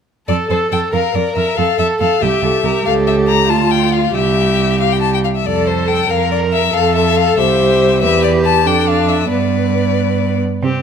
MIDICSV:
0, 0, Header, 1, 5, 480
1, 0, Start_track
1, 0, Key_signature, -1, "major"
1, 0, Tempo, 431034
1, 315, Time_signature, 6, 3, 24, 8
1, 12050, End_track
2, 0, Start_track
2, 0, Title_t, "Violin"
2, 0, Program_c, 0, 40
2, 313, Note_on_c, 0, 74, 55
2, 402, Note_off_c, 0, 74, 0
2, 561, Note_on_c, 0, 72, 40
2, 650, Note_off_c, 0, 72, 0
2, 799, Note_on_c, 0, 79, 47
2, 889, Note_off_c, 0, 79, 0
2, 1035, Note_on_c, 0, 77, 48
2, 1277, Note_on_c, 0, 74, 49
2, 1294, Note_off_c, 0, 77, 0
2, 1499, Note_off_c, 0, 74, 0
2, 1505, Note_on_c, 0, 76, 51
2, 1746, Note_on_c, 0, 77, 58
2, 1762, Note_off_c, 0, 76, 0
2, 1983, Note_off_c, 0, 77, 0
2, 1989, Note_on_c, 0, 76, 59
2, 2078, Note_off_c, 0, 76, 0
2, 2226, Note_on_c, 0, 77, 56
2, 2469, Note_on_c, 0, 76, 63
2, 2486, Note_off_c, 0, 77, 0
2, 3166, Note_off_c, 0, 76, 0
2, 3173, Note_on_c, 0, 77, 68
2, 3262, Note_off_c, 0, 77, 0
2, 3419, Note_on_c, 0, 76, 51
2, 3509, Note_off_c, 0, 76, 0
2, 3656, Note_on_c, 0, 82, 62
2, 3893, Note_on_c, 0, 81, 60
2, 3909, Note_off_c, 0, 82, 0
2, 4132, Note_on_c, 0, 79, 61
2, 4148, Note_off_c, 0, 81, 0
2, 4377, Note_on_c, 0, 77, 55
2, 4394, Note_off_c, 0, 79, 0
2, 4613, Note_off_c, 0, 77, 0
2, 4619, Note_on_c, 0, 76, 65
2, 5334, Note_off_c, 0, 76, 0
2, 5347, Note_on_c, 0, 77, 54
2, 5483, Note_on_c, 0, 79, 46
2, 5500, Note_off_c, 0, 77, 0
2, 5576, Note_off_c, 0, 79, 0
2, 5583, Note_on_c, 0, 81, 50
2, 5704, Note_off_c, 0, 81, 0
2, 5725, Note_on_c, 0, 79, 49
2, 5771, Note_off_c, 0, 79, 0
2, 5837, Note_on_c, 0, 77, 42
2, 5884, Note_off_c, 0, 77, 0
2, 5964, Note_on_c, 0, 76, 48
2, 6078, Note_on_c, 0, 74, 62
2, 6095, Note_off_c, 0, 76, 0
2, 6315, Note_on_c, 0, 72, 48
2, 6332, Note_off_c, 0, 74, 0
2, 6549, Note_on_c, 0, 79, 57
2, 6566, Note_off_c, 0, 72, 0
2, 6793, Note_on_c, 0, 77, 51
2, 6810, Note_off_c, 0, 79, 0
2, 7022, Note_off_c, 0, 77, 0
2, 7029, Note_on_c, 0, 74, 52
2, 7118, Note_off_c, 0, 74, 0
2, 7265, Note_on_c, 0, 76, 64
2, 7495, Note_on_c, 0, 77, 73
2, 7512, Note_off_c, 0, 76, 0
2, 7737, Note_off_c, 0, 77, 0
2, 7743, Note_on_c, 0, 76, 61
2, 7974, Note_on_c, 0, 77, 67
2, 7991, Note_off_c, 0, 76, 0
2, 8208, Note_off_c, 0, 77, 0
2, 8214, Note_on_c, 0, 76, 65
2, 8918, Note_off_c, 0, 76, 0
2, 8928, Note_on_c, 0, 76, 76
2, 9165, Note_off_c, 0, 76, 0
2, 9172, Note_on_c, 0, 74, 63
2, 9261, Note_off_c, 0, 74, 0
2, 9408, Note_on_c, 0, 81, 66
2, 9647, Note_on_c, 0, 79, 58
2, 9663, Note_off_c, 0, 81, 0
2, 9888, Note_on_c, 0, 77, 60
2, 9905, Note_off_c, 0, 79, 0
2, 10124, Note_on_c, 0, 76, 54
2, 10141, Note_off_c, 0, 77, 0
2, 10366, Note_off_c, 0, 76, 0
2, 10373, Note_on_c, 0, 74, 47
2, 11569, Note_off_c, 0, 74, 0
2, 12050, End_track
3, 0, Start_track
3, 0, Title_t, "Viola"
3, 0, Program_c, 1, 41
3, 316, Note_on_c, 1, 69, 34
3, 552, Note_off_c, 1, 69, 0
3, 561, Note_on_c, 1, 69, 35
3, 790, Note_off_c, 1, 69, 0
3, 797, Note_on_c, 1, 69, 35
3, 1031, Note_off_c, 1, 69, 0
3, 1042, Note_on_c, 1, 70, 36
3, 1273, Note_off_c, 1, 70, 0
3, 1283, Note_on_c, 1, 70, 34
3, 1508, Note_off_c, 1, 70, 0
3, 1515, Note_on_c, 1, 70, 36
3, 1747, Note_off_c, 1, 70, 0
3, 1754, Note_on_c, 1, 69, 31
3, 1987, Note_off_c, 1, 69, 0
3, 1996, Note_on_c, 1, 69, 39
3, 2228, Note_off_c, 1, 69, 0
3, 2239, Note_on_c, 1, 69, 37
3, 2468, Note_off_c, 1, 69, 0
3, 2478, Note_on_c, 1, 67, 37
3, 2706, Note_off_c, 1, 67, 0
3, 2711, Note_on_c, 1, 67, 38
3, 2936, Note_off_c, 1, 67, 0
3, 2943, Note_on_c, 1, 67, 36
3, 3171, Note_off_c, 1, 67, 0
3, 3178, Note_on_c, 1, 67, 42
3, 3891, Note_on_c, 1, 65, 47
3, 3908, Note_off_c, 1, 67, 0
3, 4610, Note_off_c, 1, 65, 0
3, 4617, Note_on_c, 1, 67, 38
3, 5823, Note_off_c, 1, 67, 0
3, 6070, Note_on_c, 1, 69, 35
3, 6791, Note_on_c, 1, 70, 44
3, 6808, Note_off_c, 1, 69, 0
3, 7500, Note_off_c, 1, 70, 0
3, 7506, Note_on_c, 1, 69, 39
3, 8220, Note_on_c, 1, 67, 51
3, 8237, Note_off_c, 1, 69, 0
3, 8930, Note_off_c, 1, 67, 0
3, 8937, Note_on_c, 1, 67, 47
3, 9647, Note_on_c, 1, 62, 47
3, 9663, Note_off_c, 1, 67, 0
3, 10364, Note_off_c, 1, 62, 0
3, 10371, Note_on_c, 1, 59, 30
3, 11585, Note_off_c, 1, 59, 0
3, 11839, Note_on_c, 1, 60, 30
3, 12050, Note_off_c, 1, 60, 0
3, 12050, End_track
4, 0, Start_track
4, 0, Title_t, "Violin"
4, 0, Program_c, 2, 40
4, 325, Note_on_c, 2, 69, 44
4, 1037, Note_on_c, 2, 70, 46
4, 1054, Note_off_c, 2, 69, 0
4, 1749, Note_on_c, 2, 69, 46
4, 1766, Note_off_c, 2, 70, 0
4, 2468, Note_on_c, 2, 67, 49
4, 2485, Note_off_c, 2, 69, 0
4, 2710, Note_on_c, 2, 69, 45
4, 2727, Note_off_c, 2, 67, 0
4, 2945, Note_on_c, 2, 70, 49
4, 2961, Note_off_c, 2, 69, 0
4, 3177, Note_on_c, 2, 69, 52
4, 3193, Note_off_c, 2, 70, 0
4, 3876, Note_off_c, 2, 69, 0
4, 3883, Note_on_c, 2, 65, 51
4, 4615, Note_on_c, 2, 67, 45
4, 4632, Note_off_c, 2, 65, 0
4, 5709, Note_off_c, 2, 67, 0
4, 6075, Note_on_c, 2, 69, 41
4, 6750, Note_off_c, 2, 69, 0
4, 6788, Note_on_c, 2, 70, 48
4, 7507, Note_on_c, 2, 69, 50
4, 7524, Note_off_c, 2, 70, 0
4, 8216, Note_on_c, 2, 72, 61
4, 8233, Note_off_c, 2, 69, 0
4, 8931, Note_off_c, 2, 72, 0
4, 8938, Note_on_c, 2, 71, 56
4, 9635, Note_off_c, 2, 71, 0
4, 9654, Note_on_c, 2, 69, 50
4, 10362, Note_off_c, 2, 69, 0
4, 10367, Note_on_c, 2, 71, 36
4, 11446, Note_off_c, 2, 71, 0
4, 11836, Note_on_c, 2, 67, 33
4, 12050, Note_off_c, 2, 67, 0
4, 12050, End_track
5, 0, Start_track
5, 0, Title_t, "Cello"
5, 0, Program_c, 3, 42
5, 323, Note_on_c, 3, 41, 44
5, 412, Note_off_c, 3, 41, 0
5, 561, Note_on_c, 3, 41, 36
5, 650, Note_off_c, 3, 41, 0
5, 801, Note_on_c, 3, 41, 37
5, 890, Note_off_c, 3, 41, 0
5, 1035, Note_on_c, 3, 41, 39
5, 1124, Note_off_c, 3, 41, 0
5, 1276, Note_on_c, 3, 41, 40
5, 1365, Note_off_c, 3, 41, 0
5, 1514, Note_on_c, 3, 41, 40
5, 1603, Note_off_c, 3, 41, 0
5, 1759, Note_on_c, 3, 41, 45
5, 1848, Note_off_c, 3, 41, 0
5, 1995, Note_on_c, 3, 41, 37
5, 2084, Note_off_c, 3, 41, 0
5, 2233, Note_on_c, 3, 41, 41
5, 2322, Note_off_c, 3, 41, 0
5, 2473, Note_on_c, 3, 36, 48
5, 2562, Note_off_c, 3, 36, 0
5, 2709, Note_on_c, 3, 36, 47
5, 2798, Note_off_c, 3, 36, 0
5, 2946, Note_on_c, 3, 36, 40
5, 3035, Note_off_c, 3, 36, 0
5, 3179, Note_on_c, 3, 37, 52
5, 3889, Note_on_c, 3, 38, 48
5, 3906, Note_off_c, 3, 37, 0
5, 4612, Note_off_c, 3, 38, 0
5, 4619, Note_on_c, 3, 36, 48
5, 5824, Note_off_c, 3, 36, 0
5, 6070, Note_on_c, 3, 41, 43
5, 6747, Note_off_c, 3, 41, 0
5, 6792, Note_on_c, 3, 41, 42
5, 7495, Note_off_c, 3, 41, 0
5, 7508, Note_on_c, 3, 41, 56
5, 8207, Note_off_c, 3, 41, 0
5, 8223, Note_on_c, 3, 36, 49
5, 8941, Note_on_c, 3, 40, 55
5, 8958, Note_off_c, 3, 36, 0
5, 9649, Note_on_c, 3, 41, 48
5, 9665, Note_off_c, 3, 40, 0
5, 10374, Note_off_c, 3, 41, 0
5, 10379, Note_on_c, 3, 43, 42
5, 11589, Note_off_c, 3, 43, 0
5, 11837, Note_on_c, 3, 48, 47
5, 12050, Note_off_c, 3, 48, 0
5, 12050, End_track
0, 0, End_of_file